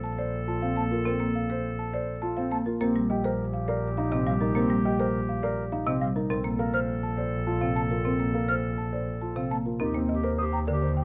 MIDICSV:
0, 0, Header, 1, 7, 480
1, 0, Start_track
1, 0, Key_signature, -2, "major"
1, 0, Tempo, 582524
1, 874, Time_signature, 3, 2, 24, 8
1, 9098, End_track
2, 0, Start_track
2, 0, Title_t, "Flute"
2, 0, Program_c, 0, 73
2, 633, Note_on_c, 0, 81, 82
2, 683, Note_off_c, 0, 81, 0
2, 2072, Note_on_c, 0, 81, 88
2, 2121, Note_off_c, 0, 81, 0
2, 3515, Note_on_c, 0, 77, 94
2, 3565, Note_off_c, 0, 77, 0
2, 4951, Note_on_c, 0, 77, 96
2, 5000, Note_off_c, 0, 77, 0
2, 5552, Note_on_c, 0, 89, 70
2, 5602, Note_off_c, 0, 89, 0
2, 6390, Note_on_c, 0, 81, 83
2, 6439, Note_off_c, 0, 81, 0
2, 6991, Note_on_c, 0, 89, 66
2, 7040, Note_off_c, 0, 89, 0
2, 7836, Note_on_c, 0, 81, 76
2, 7885, Note_off_c, 0, 81, 0
2, 8557, Note_on_c, 0, 87, 63
2, 8606, Note_off_c, 0, 87, 0
2, 8676, Note_on_c, 0, 82, 78
2, 8725, Note_off_c, 0, 82, 0
2, 9098, End_track
3, 0, Start_track
3, 0, Title_t, "Marimba"
3, 0, Program_c, 1, 12
3, 30, Note_on_c, 1, 81, 65
3, 152, Note_on_c, 1, 74, 80
3, 189, Note_off_c, 1, 81, 0
3, 309, Note_off_c, 1, 74, 0
3, 395, Note_on_c, 1, 81, 66
3, 512, Note_on_c, 1, 77, 82
3, 550, Note_off_c, 1, 81, 0
3, 669, Note_off_c, 1, 77, 0
3, 757, Note_on_c, 1, 70, 72
3, 865, Note_off_c, 1, 70, 0
3, 875, Note_on_c, 1, 70, 87
3, 1030, Note_off_c, 1, 70, 0
3, 1116, Note_on_c, 1, 77, 67
3, 1235, Note_on_c, 1, 72, 84
3, 1271, Note_off_c, 1, 77, 0
3, 1390, Note_off_c, 1, 72, 0
3, 1474, Note_on_c, 1, 81, 66
3, 1595, Note_on_c, 1, 74, 84
3, 1630, Note_off_c, 1, 81, 0
3, 1750, Note_off_c, 1, 74, 0
3, 1828, Note_on_c, 1, 81, 75
3, 1951, Note_on_c, 1, 77, 85
3, 1988, Note_off_c, 1, 81, 0
3, 2109, Note_off_c, 1, 77, 0
3, 2191, Note_on_c, 1, 70, 69
3, 2303, Note_off_c, 1, 70, 0
3, 2313, Note_on_c, 1, 70, 91
3, 2470, Note_off_c, 1, 70, 0
3, 2553, Note_on_c, 1, 75, 73
3, 2673, Note_on_c, 1, 72, 89
3, 2709, Note_off_c, 1, 75, 0
3, 2830, Note_off_c, 1, 72, 0
3, 2913, Note_on_c, 1, 77, 70
3, 3032, Note_on_c, 1, 74, 90
3, 3070, Note_off_c, 1, 77, 0
3, 3189, Note_off_c, 1, 74, 0
3, 3274, Note_on_c, 1, 77, 72
3, 3392, Note_on_c, 1, 75, 92
3, 3430, Note_off_c, 1, 77, 0
3, 3549, Note_off_c, 1, 75, 0
3, 3631, Note_on_c, 1, 70, 76
3, 3749, Note_off_c, 1, 70, 0
3, 3759, Note_on_c, 1, 70, 92
3, 3912, Note_off_c, 1, 70, 0
3, 3999, Note_on_c, 1, 75, 78
3, 4117, Note_on_c, 1, 72, 91
3, 4152, Note_off_c, 1, 75, 0
3, 4271, Note_off_c, 1, 72, 0
3, 4358, Note_on_c, 1, 77, 75
3, 4475, Note_on_c, 1, 74, 95
3, 4512, Note_off_c, 1, 77, 0
3, 4631, Note_off_c, 1, 74, 0
3, 4715, Note_on_c, 1, 77, 82
3, 4835, Note_on_c, 1, 75, 87
3, 4870, Note_off_c, 1, 77, 0
3, 4990, Note_off_c, 1, 75, 0
3, 5075, Note_on_c, 1, 70, 73
3, 5183, Note_off_c, 1, 70, 0
3, 5193, Note_on_c, 1, 70, 88
3, 5349, Note_off_c, 1, 70, 0
3, 5434, Note_on_c, 1, 77, 77
3, 5552, Note_on_c, 1, 72, 88
3, 5590, Note_off_c, 1, 77, 0
3, 5709, Note_off_c, 1, 72, 0
3, 5795, Note_on_c, 1, 81, 68
3, 5911, Note_on_c, 1, 74, 71
3, 5950, Note_off_c, 1, 81, 0
3, 6069, Note_off_c, 1, 74, 0
3, 6153, Note_on_c, 1, 81, 67
3, 6270, Note_on_c, 1, 77, 79
3, 6310, Note_off_c, 1, 81, 0
3, 6429, Note_off_c, 1, 77, 0
3, 6511, Note_on_c, 1, 70, 64
3, 6625, Note_off_c, 1, 70, 0
3, 6635, Note_on_c, 1, 70, 70
3, 6790, Note_off_c, 1, 70, 0
3, 6873, Note_on_c, 1, 77, 60
3, 6992, Note_on_c, 1, 72, 77
3, 7030, Note_off_c, 1, 77, 0
3, 7149, Note_off_c, 1, 72, 0
3, 7234, Note_on_c, 1, 81, 55
3, 7357, Note_on_c, 1, 74, 68
3, 7390, Note_off_c, 1, 81, 0
3, 7511, Note_off_c, 1, 74, 0
3, 7592, Note_on_c, 1, 81, 58
3, 7718, Note_on_c, 1, 77, 67
3, 7749, Note_off_c, 1, 81, 0
3, 7871, Note_off_c, 1, 77, 0
3, 7957, Note_on_c, 1, 70, 52
3, 8069, Note_off_c, 1, 70, 0
3, 8079, Note_on_c, 1, 70, 84
3, 8232, Note_off_c, 1, 70, 0
3, 8314, Note_on_c, 1, 75, 74
3, 8435, Note_on_c, 1, 72, 82
3, 8470, Note_off_c, 1, 75, 0
3, 8590, Note_off_c, 1, 72, 0
3, 8674, Note_on_c, 1, 79, 64
3, 8795, Note_on_c, 1, 74, 78
3, 8830, Note_off_c, 1, 79, 0
3, 8950, Note_off_c, 1, 74, 0
3, 9038, Note_on_c, 1, 79, 70
3, 9098, Note_off_c, 1, 79, 0
3, 9098, End_track
4, 0, Start_track
4, 0, Title_t, "Clarinet"
4, 0, Program_c, 2, 71
4, 0, Note_on_c, 2, 69, 68
4, 2160, Note_off_c, 2, 69, 0
4, 2316, Note_on_c, 2, 67, 79
4, 5042, Note_off_c, 2, 67, 0
4, 5194, Note_on_c, 2, 69, 76
4, 7921, Note_off_c, 2, 69, 0
4, 8074, Note_on_c, 2, 67, 39
4, 8250, Note_off_c, 2, 67, 0
4, 8328, Note_on_c, 2, 67, 50
4, 8503, Note_off_c, 2, 67, 0
4, 8573, Note_on_c, 2, 67, 61
4, 8750, Note_off_c, 2, 67, 0
4, 8828, Note_on_c, 2, 67, 63
4, 9003, Note_off_c, 2, 67, 0
4, 9098, End_track
5, 0, Start_track
5, 0, Title_t, "Grand piano"
5, 0, Program_c, 3, 0
5, 150, Note_on_c, 3, 72, 60
5, 309, Note_off_c, 3, 72, 0
5, 391, Note_on_c, 3, 65, 65
5, 514, Note_on_c, 3, 60, 59
5, 549, Note_off_c, 3, 65, 0
5, 670, Note_off_c, 3, 60, 0
5, 751, Note_on_c, 3, 65, 57
5, 875, Note_on_c, 3, 60, 67
5, 909, Note_off_c, 3, 65, 0
5, 1030, Note_off_c, 3, 60, 0
5, 1234, Note_on_c, 3, 72, 64
5, 1390, Note_off_c, 3, 72, 0
5, 1595, Note_on_c, 3, 72, 60
5, 1750, Note_off_c, 3, 72, 0
5, 1834, Note_on_c, 3, 65, 75
5, 1958, Note_on_c, 3, 60, 68
5, 1990, Note_off_c, 3, 65, 0
5, 2112, Note_off_c, 3, 60, 0
5, 2195, Note_on_c, 3, 65, 62
5, 2317, Note_on_c, 3, 60, 70
5, 2350, Note_off_c, 3, 65, 0
5, 2471, Note_off_c, 3, 60, 0
5, 2559, Note_on_c, 3, 67, 76
5, 2676, Note_on_c, 3, 70, 70
5, 2712, Note_off_c, 3, 67, 0
5, 2831, Note_off_c, 3, 70, 0
5, 3036, Note_on_c, 3, 70, 74
5, 3191, Note_off_c, 3, 70, 0
5, 3279, Note_on_c, 3, 63, 77
5, 3396, Note_on_c, 3, 60, 67
5, 3432, Note_off_c, 3, 63, 0
5, 3551, Note_off_c, 3, 60, 0
5, 3635, Note_on_c, 3, 63, 74
5, 3756, Note_on_c, 3, 60, 74
5, 3790, Note_off_c, 3, 63, 0
5, 3911, Note_off_c, 3, 60, 0
5, 3997, Note_on_c, 3, 67, 78
5, 4116, Note_on_c, 3, 70, 66
5, 4151, Note_off_c, 3, 67, 0
5, 4271, Note_off_c, 3, 70, 0
5, 4479, Note_on_c, 3, 70, 73
5, 4632, Note_off_c, 3, 70, 0
5, 4714, Note_on_c, 3, 63, 71
5, 4835, Note_on_c, 3, 60, 70
5, 4870, Note_off_c, 3, 63, 0
5, 4990, Note_off_c, 3, 60, 0
5, 5074, Note_on_c, 3, 63, 68
5, 5192, Note_on_c, 3, 60, 64
5, 5230, Note_off_c, 3, 63, 0
5, 5349, Note_off_c, 3, 60, 0
5, 5431, Note_on_c, 3, 70, 77
5, 5554, Note_on_c, 3, 72, 64
5, 5589, Note_off_c, 3, 70, 0
5, 5710, Note_off_c, 3, 72, 0
5, 5916, Note_on_c, 3, 72, 63
5, 6071, Note_off_c, 3, 72, 0
5, 6154, Note_on_c, 3, 65, 70
5, 6274, Note_on_c, 3, 60, 55
5, 6310, Note_off_c, 3, 65, 0
5, 6430, Note_off_c, 3, 60, 0
5, 6515, Note_on_c, 3, 65, 58
5, 6637, Note_on_c, 3, 60, 53
5, 6670, Note_off_c, 3, 65, 0
5, 6791, Note_off_c, 3, 60, 0
5, 6879, Note_on_c, 3, 70, 63
5, 6997, Note_on_c, 3, 72, 53
5, 7032, Note_off_c, 3, 70, 0
5, 7151, Note_off_c, 3, 72, 0
5, 7357, Note_on_c, 3, 72, 53
5, 7511, Note_off_c, 3, 72, 0
5, 7597, Note_on_c, 3, 65, 56
5, 7717, Note_on_c, 3, 60, 49
5, 7751, Note_off_c, 3, 65, 0
5, 7871, Note_off_c, 3, 60, 0
5, 7956, Note_on_c, 3, 65, 49
5, 8077, Note_on_c, 3, 63, 67
5, 8111, Note_off_c, 3, 65, 0
5, 8196, Note_on_c, 3, 60, 70
5, 8231, Note_off_c, 3, 63, 0
5, 8351, Note_off_c, 3, 60, 0
5, 8434, Note_on_c, 3, 70, 64
5, 8555, Note_on_c, 3, 72, 72
5, 8590, Note_off_c, 3, 70, 0
5, 8710, Note_off_c, 3, 72, 0
5, 8799, Note_on_c, 3, 70, 60
5, 8916, Note_on_c, 3, 72, 60
5, 8952, Note_off_c, 3, 70, 0
5, 9071, Note_off_c, 3, 72, 0
5, 9098, End_track
6, 0, Start_track
6, 0, Title_t, "Marimba"
6, 0, Program_c, 4, 12
6, 630, Note_on_c, 4, 58, 57
6, 788, Note_off_c, 4, 58, 0
6, 869, Note_on_c, 4, 60, 74
6, 989, Note_on_c, 4, 58, 62
6, 1028, Note_off_c, 4, 60, 0
6, 1148, Note_off_c, 4, 58, 0
6, 2072, Note_on_c, 4, 58, 65
6, 2229, Note_off_c, 4, 58, 0
6, 2314, Note_on_c, 4, 58, 86
6, 2436, Note_on_c, 4, 55, 70
6, 2470, Note_off_c, 4, 58, 0
6, 2591, Note_off_c, 4, 55, 0
6, 3394, Note_on_c, 4, 48, 90
6, 3515, Note_on_c, 4, 55, 74
6, 3550, Note_off_c, 4, 48, 0
6, 3670, Note_off_c, 4, 55, 0
6, 3750, Note_on_c, 4, 58, 86
6, 3874, Note_on_c, 4, 55, 75
6, 3908, Note_off_c, 4, 58, 0
6, 4030, Note_off_c, 4, 55, 0
6, 4833, Note_on_c, 4, 48, 101
6, 4956, Note_on_c, 4, 55, 65
6, 4990, Note_off_c, 4, 48, 0
6, 5111, Note_off_c, 4, 55, 0
6, 5193, Note_on_c, 4, 60, 83
6, 5309, Note_on_c, 4, 58, 72
6, 5350, Note_off_c, 4, 60, 0
6, 5468, Note_off_c, 4, 58, 0
6, 6275, Note_on_c, 4, 48, 81
6, 6399, Note_on_c, 4, 58, 61
6, 6430, Note_off_c, 4, 48, 0
6, 6552, Note_off_c, 4, 58, 0
6, 6633, Note_on_c, 4, 60, 72
6, 6753, Note_on_c, 4, 58, 60
6, 6790, Note_off_c, 4, 60, 0
6, 6910, Note_off_c, 4, 58, 0
6, 7713, Note_on_c, 4, 48, 76
6, 7840, Note_on_c, 4, 58, 58
6, 7870, Note_off_c, 4, 48, 0
6, 7992, Note_off_c, 4, 58, 0
6, 8073, Note_on_c, 4, 60, 76
6, 8193, Note_on_c, 4, 58, 64
6, 8230, Note_off_c, 4, 60, 0
6, 8350, Note_off_c, 4, 58, 0
6, 8801, Note_on_c, 4, 50, 85
6, 8952, Note_off_c, 4, 50, 0
6, 9098, End_track
7, 0, Start_track
7, 0, Title_t, "Double bass"
7, 0, Program_c, 5, 43
7, 0, Note_on_c, 5, 34, 56
7, 2186, Note_off_c, 5, 34, 0
7, 2318, Note_on_c, 5, 34, 69
7, 5067, Note_off_c, 5, 34, 0
7, 5195, Note_on_c, 5, 34, 72
7, 7946, Note_off_c, 5, 34, 0
7, 8075, Note_on_c, 5, 39, 68
7, 9098, Note_off_c, 5, 39, 0
7, 9098, End_track
0, 0, End_of_file